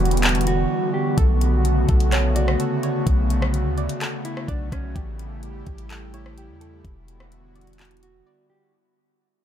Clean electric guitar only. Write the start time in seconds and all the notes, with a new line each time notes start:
0.47 F#4
0.94 G4
2.35 F#4
4.25 E4
4.48 D4
4.72 C#4
6.14 E4
8.03 F#4
8.50 G4